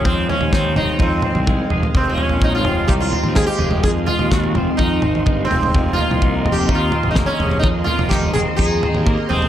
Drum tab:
SD |----o-----------|------------o---|----o-----------|------------o---|
T2 |------o---ooo---|------o----oo---|------o---ooo---|------o----oo---|
FT |o-oo-oo-o-o---oo|o-oo--o-o-o---oo|o-oo-oo-o-o---oo|o-oo--o-o-o---oo|
BD |o---o---o---o---|o---o---o---o---|o---o---o---o---|o---o---o---o---|

SD |----o-----------|
T2 |------o---ooo---|
FT |o-oo-oo-o-o---oo|
BD |o---o---o---o---|